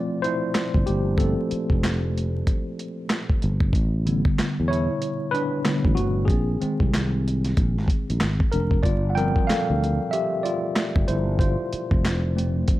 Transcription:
0.00 1.18 F3 soft
0.00 1.19 A3 soft
0.00 1.20 C4 medium
0.00 0.24 E4 soft
0.00 0.19 F4 medium
0.00 0.22 C5 medium
0.00 0.24 D5 medium
0.22 0.83 E4 medium
0.22 0.82 C5 medium
0.22 closed hi-hat soft
0.55 snare loud
0.55 clap medium
0.55 closed hi-hat medium
0.74 0.86 G1 medium
0.74 kick medium
0.86 1.34 G1 medium
0.86 1.17 A#3 soft
0.86 1.19 G4 medium
0.86 closed hi-hat medium
1.18 3.70 F3 soft
1.18 3.70 A3 soft
1.18 3.07 C4 medium
1.18 3.06 A4 medium
1.18 kick medium
1.18 closed hi-hat medium
1.51 muted fretless electric bass stroke soft
1.51 closed hi-hat soft
1.70 2.42 F1 medium
1.70 kick medium
1.84 snare loud
1.84 clap medium
1.84 closed hi-hat medium
2.18 closed hi-hat medium
2.47 kick medium
2.47 closed hi-hat medium
2.79 closed hi-hat soft
3.10 snare medium
3.10 clap medium
3.10 closed hi-hat medium
3.30 kick medium
3.42 3.71 G1 medium
3.42 closed hi-hat soft
3.60 kick medium
3.73 4.21 A1 medium
3.73 kick loud
3.73 closed hi-hat medium
4.06 5.63 D3 medium
4.06 5.64 G3 soft
4.06 5.64 B3 medium
4.06 closed hi-hat soft
4.25 muted fretless electric bass stroke soft
4.25 kick medium
4.39 muted fretless electric bass stroke soft
4.39 snare loud
4.39 clap medium
4.39 closed hi-hat medium
4.60 4.87 E2 medium
4.68 5.30 E4 medium
4.68 5.34 C#5 medium
4.73 closed hi-hat medium
5.02 closed hi-hat medium
5.31 5.93 D4 medium
5.31 5.92 B4 medium
5.31 closed hi-hat soft
5.65 5.93 D3 soft
5.65 5.94 G3 soft
5.65 5.94 B3 soft
5.65 snare medium
5.65 clap medium
5.65 closed hi-hat medium
5.85 5.96 A1 medium
5.85 kick medium
5.95 6.26 G1 medium
5.95 6.12 A3 soft
5.95 6.10 F#4 medium
5.95 closed hi-hat medium
6.25 6.57 A#1 medium
6.25 8.14 G#4 medium
6.25 kick medium
6.29 6.60 C4 medium
6.29 closed hi-hat medium
6.60 7.52 D#3 soft
6.60 7.52 G#3 soft
6.60 7.53 C4 medium
6.60 muted fretless electric bass stroke soft
6.60 closed hi-hat medium
6.80 7.53 C2 medium
6.80 kick medium
6.94 snare loud
6.94 clap medium
6.94 closed hi-hat medium
7.28 closed hi-hat medium
7.45 snare soft
7.45 closed hi-hat soft
7.57 7.78 A#1 medium
7.57 kick medium
7.57 closed hi-hat medium
7.78 7.88 G#1 medium
7.78 snare soft
7.88 kick medium
7.88 closed hi-hat soft
8.10 8.20 A#1 medium
8.10 closed hi-hat soft
8.20 8.39 G#1 medium
8.20 snare medium
8.20 clap medium
8.20 closed hi-hat medium
8.40 kick medium
8.52 8.82 F1 medium
8.52 8.68 D4 soft
8.52 8.66 A#4 medium
8.52 closed hi-hat medium
8.71 kick medium
8.83 9.31 G1 medium
8.83 9.09 F4 medium
8.83 9.11 D5 medium
8.83 kick medium
8.83 closed hi-hat medium
9.10 9.15 F#5 medium
9.15 10.08 F3 medium
9.15 10.08 G3 soft
9.15 10.08 C4 medium
9.15 9.46 A#4 medium
9.15 9.48 G5 loud
9.15 closed hi-hat soft
9.36 kick medium
9.47 10.08 A4 medium
9.47 10.13 F5 medium
9.47 muted fretless electric bass stroke soft
9.47 snare loud
9.47 clap medium
9.47 closed hi-hat medium
9.70 9.98 D2 medium
9.84 closed hi-hat soft
10.11 10.42 G4 medium
10.11 10.44 E5 medium
10.11 closed hi-hat medium
10.43 11.04 F4 medium
10.43 11.09 D5 medium
10.43 closed hi-hat soft
10.76 snare loud
10.76 clap medium
10.76 closed hi-hat medium
10.96 11.07 G1 medium
10.96 kick medium
11.08 11.55 G1 medium
11.08 11.24 E4 medium
11.08 11.22 C5 medium
11.08 closed hi-hat medium
11.39 12.32 F4 medium
11.39 12.31 C5 medium
11.39 kick medium
11.39 closed hi-hat medium
11.73 muted fretless electric bass stroke soft
11.73 closed hi-hat medium
11.91 12.64 F1 medium
11.91 kick medium
12.05 snare loud
12.05 clap medium
12.05 closed hi-hat medium
12.36 12.80 F3 soft
12.36 12.80 A3 soft
12.36 12.80 C4 medium
12.36 closed hi-hat medium
12.68 kick medium
12.68 closed hi-hat medium

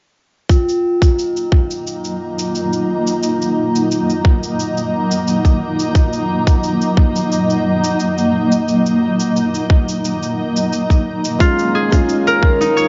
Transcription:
0.49 11.37 F#3 medium
0.49 11.37 A#3 medium
0.49 11.37 D#4 medium
0.49 12.88 F4 medium
0.49 11.37 D#5 medium
0.49 11.37 A#5 medium
0.49 kick loud
0.49 cabasa soft
0.69 cabasa soft
1.02 kick medium
1.02 cabasa medium
1.19 cabasa soft
1.37 cabasa soft
1.52 kick medium
1.71 cabasa medium
1.87 cabasa soft
2.05 cabasa soft
2.39 cabasa medium
2.55 cabasa soft
2.73 cabasa soft
3.07 cabasa medium
3.23 cabasa soft
3.42 cabasa soft
3.76 cabasa medium
3.92 cabasa soft
4.10 cabasa soft
4.25 kick loud
4.43 cabasa medium
4.60 cabasa medium
4.77 cabasa soft
5.11 cabasa medium
5.28 cabasa soft
5.45 kick medium
5.45 cabasa soft
5.79 cabasa medium
5.95 kick loud
5.95 cabasa medium
6.13 cabasa soft
6.47 kick medium
6.47 cabasa medium
6.63 cabasa soft
6.82 cabasa soft
6.97 kick loud
7.16 cabasa medium
7.32 cabasa medium
7.50 cabasa soft
7.84 cabasa medium
8.00 cabasa soft
8.18 cabasa soft
8.52 cabasa medium
8.68 cabasa soft
8.86 cabasa soft
9.20 cabasa medium
9.37 cabasa soft
9.55 cabasa soft
9.70 kick loud
9.89 cabasa medium
10.05 cabasa medium
10.23 cabasa soft
10.56 cabasa medium
10.73 cabasa soft
10.90 kick medium
10.90 cabasa soft
11.25 cabasa medium
11.38 12.88 D#3 medium
11.38 11.87 G#3 medium
11.38 12.88 G#3 medium
11.38 11.88 C#4 medium
11.38 12.88 C#4 medium
11.38 11.88 F4 medium
11.38 12.88 F4 medium
11.38 12.88 C#5 medium
11.38 12.88 F5 medium
11.38 kick loud
11.38 cabasa soft
11.59 cabasa soft
11.75 12.88 G#4 medium
11.90 12.88 G#3 medium
11.90 12.88 C#4 medium
11.90 kick medium
11.90 cabasa medium
11.94 12.88 F4 medium
12.09 cabasa soft
12.27 12.88 A#4 medium
12.27 cabasa soft
12.43 kick medium
12.61 12.88 D#4 medium
12.61 cabasa medium
12.77 12.88 C#5 medium
12.77 cabasa soft

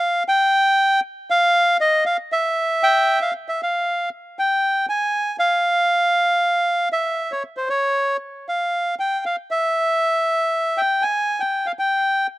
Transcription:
0.00 0.23 F5 medium
0.28 1.00 G5 loud
1.30 1.77 F5 loud
1.81 2.04 D#5 loud
2.06 2.17 F5 medium
2.32 3.31 E5 medium
2.83 3.19 G5 loud
3.22 3.33 F5 medium
3.49 3.61 E5 medium
3.63 4.09 F5 medium
4.39 4.86 G5 medium
4.89 5.36 G#5 medium
5.39 6.89 F5 medium
6.92 7.32 E5 medium
7.32 7.43 C#5 medium
7.57 7.69 C5 medium
7.70 8.17 C#5 medium
8.49 8.95 F5 medium
8.99 9.24 G5 medium
9.25 9.36 F5 medium
9.51 10.81 E5 medium
10.78 11.03 G5 medium
11.02 11.42 G#5 medium
11.40 11.67 G5 medium
11.66 11.72 F5 medium
11.79 12.27 G5 medium

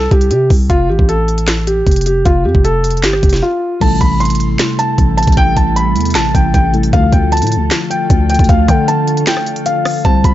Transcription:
0.11 0.32 C2 loud
0.11 0.29 G4 medium
0.11 kick loud
0.11 closed hi-hat soft
0.21 closed hi-hat medium
0.31 0.49 C3 loud
0.31 0.49 G4 medium
0.31 closed hi-hat medium
0.50 0.69 C2 loud
0.50 kick loud
0.50 open hi-hat medium
0.70 0.91 F1 loud
0.70 0.88 F4 loud
0.70 kick loud
0.70 closed hi-hat medium
0.89 0.98 A1 loud
0.89 1.07 G4 medium
0.99 1.83 A1 loud
0.99 kick loud
1.09 1.64 A4 medium
1.09 closed hi-hat medium
1.28 closed hi-hat soft
1.38 closed hi-hat medium
1.47 snare loud
1.47 clap medium
1.47 closed hi-hat medium
1.67 2.04 G4 medium
1.67 closed hi-hat medium
1.87 2.24 F1 loud
1.87 kick medium
1.87 closed hi-hat medium
1.91 closed hi-hat medium
1.96 closed hi-hat medium
2.01 closed hi-hat medium
2.06 2.24 G4 medium
2.06 closed hi-hat medium
2.25 2.47 F1 loud
2.25 2.43 F4 loud
2.25 kick loud
2.25 closed hi-hat medium
2.45 2.54 F2 loud
2.45 2.63 G4 medium
2.55 3.05 F1 loud
2.55 kick loud
2.64 3.01 A4 medium
2.64 closed hi-hat medium
2.84 closed hi-hat medium
2.91 closed hi-hat medium
2.97 closed hi-hat soft
3.03 3.22 G1 loud
3.03 3.40 G4 medium
3.03 snare loud
3.03 clap loud
3.03 closed hi-hat medium
3.13 cross-stick medium
3.23 3.42 F1 loud
3.23 kick loud
3.23 closed hi-hat medium
3.29 snare medium
3.29 closed hi-hat medium
3.36 closed hi-hat medium
3.42 3.79 F4 medium
3.80 4.00 A1 loud
3.80 6.69 C3 medium
3.80 6.90 C3 medium
3.80 6.69 G3 medium
3.80 6.90 G3 medium
3.80 6.70 A3 medium
3.80 6.90 E4 medium
3.80 6.70 E4 medium
3.80 10.01 A4 loud
3.80 6.70 A4 medium
3.80 3.99 A5 loud
3.80 kick loud
3.80 closed hi-hat medium
3.80 crash loud
4.01 4.57 A1 loud
4.01 4.19 B5 medium
4.01 kick medium
4.01 closed hi-hat medium
4.20 4.75 C6 medium
4.20 closed hi-hat medium
4.25 closed hi-hat medium
4.30 closed hi-hat medium
4.35 closed hi-hat medium
4.40 closed hi-hat medium
4.59 snare loud
4.59 clap loud
4.59 closed hi-hat medium
4.79 5.15 A5 medium
4.79 closed hi-hat medium
4.98 5.26 A1 loud
4.98 kick loud
4.98 closed hi-hat medium
5.17 5.35 A5 medium
5.17 closed hi-hat medium
5.23 closed hi-hat medium
5.27 5.37 A1 loud
5.27 kick loud
5.27 closed hi-hat medium
5.32 closed hi-hat medium
5.37 5.56 A1 loud
5.37 5.55 G5 loud
5.37 kick loud
5.37 closed hi-hat medium
5.57 5.97 A1 loud
5.57 5.75 A5 medium
5.57 kick medium
5.57 closed hi-hat medium
5.76 6.13 B5 medium
5.76 closed hi-hat medium
5.96 6.17 E2 loud
5.96 closed hi-hat medium
6.01 closed hi-hat medium
6.05 closed hi-hat medium
6.10 closed hi-hat medium
6.15 6.34 A1 loud
6.15 6.33 A5 medium
6.15 snare loud
6.15 clap loud
6.15 closed hi-hat medium
6.35 6.53 A1 loud
6.35 6.52 G5 medium
6.35 kick loud
6.35 closed hi-hat medium
6.54 6.92 A1 loud
6.54 6.72 G5 medium
6.54 kick medium
6.54 closed hi-hat medium
6.73 6.93 C3 soft
6.73 6.93 G3 soft
6.73 6.92 A3 soft
6.73 6.93 E4 soft
6.73 6.93 A4 medium
6.73 closed hi-hat soft
6.83 closed hi-hat medium
6.92 7.12 D2 loud
6.92 10.00 D3 medium
6.92 10.02 D3 medium
6.92 10.01 F3 medium
6.92 10.02 A3 medium
6.92 10.01 A3 medium
6.92 10.02 F4 medium
6.92 10.01 F4 medium
6.92 10.01 A4 medium
6.92 7.11 F5 loud
6.92 kick loud
6.92 closed hi-hat medium
7.13 7.43 D2 loud
7.13 7.31 G5 medium
7.13 kick medium
7.13 closed hi-hat medium
7.32 7.87 A5 medium
7.32 closed hi-hat medium
7.37 closed hi-hat medium
7.42 7.58 A2 loud
7.42 closed hi-hat medium
7.47 closed hi-hat medium
7.52 closed hi-hat medium
7.57 7.70 D2 loud
7.71 snare loud
7.71 clap loud
7.71 closed hi-hat medium
7.90 8.27 G5 medium
7.90 closed hi-hat medium
8.10 8.38 D2 loud
8.10 kick loud
8.10 closed hi-hat medium
8.30 8.47 G5 medium
8.30 closed hi-hat medium
8.34 closed hi-hat medium
8.39 8.49 D2 loud
8.39 kick loud
8.39 closed hi-hat medium
8.44 closed hi-hat medium
8.49 8.68 D2 loud
8.49 8.67 F5 loud
8.49 kick loud
8.49 closed hi-hat medium
8.68 9.25 D3 loud
8.68 8.86 G5 medium
8.68 kick medium
8.68 closed hi-hat medium
8.88 9.25 A5 medium
8.88 closed hi-hat medium
9.08 closed hi-hat medium
9.17 closed hi-hat medium
9.27 9.64 G5 medium
9.27 snare loud
9.27 clap loud
9.27 closed hi-hat medium
9.37 cross-stick medium
9.46 closed hi-hat medium
9.56 closed hi-hat medium
9.66 10.03 F5 medium
9.66 closed hi-hat medium
9.85 cross-stick loud
9.85 open hi-hat medium
10.04 10.24 C2 loud
10.04 10.34 D3 medium
10.04 10.34 G3 medium
10.04 10.34 C4 medium
10.04 10.34 G4 medium
10.04 10.34 C5 medium
10.04 10.23 A5 loud
10.04 kick loud
10.04 closed hi-hat medium
10.24 10.34 C2 loud
10.24 10.34 B5 medium
10.24 kick medium
10.24 closed hi-hat medium

